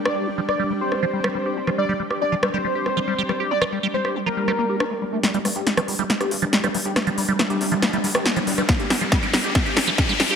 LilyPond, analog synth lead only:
\new Staff \with { instrumentName = "Analog synth lead" } { \time 4/4 \key c \dorian \tempo 4 = 139 d''8 r8 d''16 r8 c''2 r16 | d''8 r8 d''16 r8 c''2 r16 | d''8 r8 c''16 r8 bes'2 r16 | r1 |
r1 | r1 | }